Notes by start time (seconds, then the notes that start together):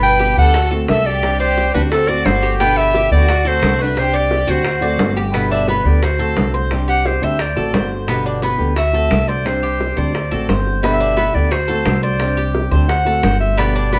Already playing: G1 B2 D3 G3 B3 G4
0.03 B4 G5
0.19 G4, high bongo
0.37 D2 D3 G3 B3 G4 A4 F#5
0.54 F#4, muted nylon-string guitar stroke, high bongo
0.71 A3 C4 F#4 A4
0.88 C2 D3 A3 C4 A4 E5, high bongo, low bongo
1.06 G4 D5
1.22 C3 G3 C4 D4 G4, high bongo
1.40 G4 C5 D5
1.58 high bongo
1.74 D2 G3 C4 D4 F#4 G4 B4, high bongo
1.91 C4 A4, muted nylon-string guitar stroke, high bongo
2.08 A3 C4 F#4 D5, high bongo
2.25 G1 D3 A3 C4 F#4 C5, high bongo, low bongo
2.43 G4, high bongo
2.59 B2 D3 G3 B3 G4 B4 G5, high bongo
2.77 G4 E5
2.94 G4, high bongo
3.11 D2 D3 G3 B3 F#4 G4 D5
3.28 F#4, muted nylon-string guitar stroke, high bongo
3.45 A3 C4 F#4 A4 C5
3.62 C2 D3 A3 C4 F#4, high bongo, low bongo
3.81 D4 B4
3.96 C3 G3 C4 D4 G4 C5, high bongo
4.14 G4 D5
4.31 high bongo
4.47 D2 G3 C4 D4 F#4 G4 C5, high bongo
4.64 muted nylon-string guitar stroke, high bongo
4.81 A3 C4 F#4 D5, high bongo
4.98 G1 D3 A3 C4 F#4, high bongo, low bongo
5.16 G4, high bongo
5.33 B2 D3 G3 B3 G4, high bongo
5.51 D4 E5
5.68 B3 B4, high bongo
5.85 D2 D3 G3 B3 G4 D5
6.02 F#4 C5, muted nylon-string guitar stroke, high bongo
6.19 A3 C4 F#4 A4
6.37 C2 D3 A3 C4 F#4, high bongo, low bongo
6.54 C5
6.71 C3 G3 C4 D4 G4, high bongo
6.88 G4 F#5
7.05 C5, high bongo
7.22 D2 G3 C4 D4 G4 C5 E5, high bongo
7.39 D5, muted nylon-string guitar stroke, high bongo
7.56 A1 A3 C4 F#4 A4, high bongo
7.74 G1 D3 A3 C4 F#4 C5, high bongo, low bongo
7.91 high bongo
8.07 B2 D3 G3 B3 G4, high bongo
8.26 D4
8.42 B3, high bongo
8.58 D2 D3 G3 B3 G4
8.76 F#4 E5, muted nylon-string guitar stroke, high bongo
8.93 A3 C4 F#4 A4
9.11 C2 D3 A3 C4 F#4, high bongo, low bongo
9.28 C5 D5
9.45 C3 G3 C4 D4 G4 C5, high bongo
9.63 G4
9.81 high bongo
9.97 D2 G3 C4 D4 G4 C5 D5, high bongo
10.14 muted nylon-string guitar stroke, high bongo
10.31 A1 A3 C4 F#4 A4, high bongo
10.49 G1 D3 A3 C4 F#4 C5, high bongo, low bongo
10.67 high bongo
10.82 B2 D3 G3 B3 G4 E5, high bongo
11.00 D4
11.17 B3, high bongo
11.34 D2 D3 G3 B3 G4 D5
11.51 F#4 C5, muted nylon-string guitar stroke, high bongo
11.68 A3 C4 F#4 A4
11.86 C2 D3 A3 C4 F#4, high bongo, low bongo
12.03 C5 D5
12.20 C3 G3 C4 D4 G4, high bongo
12.37 G4
12.55 high bongo
12.71 D2 G3 C4 D4 G4 C5, high bongo
12.89 F#5, muted nylon-string guitar stroke, high bongo
13.05 A3 C4 F#4 A4, high bongo
13.23 G1 D3 A3 C4 F#4 C5, high bongo, low bongo
13.40 E5, high bongo
13.57 B2 D3 G3 B3 G4 D5, high bongo
13.76 D4
13.92 B3, high bongo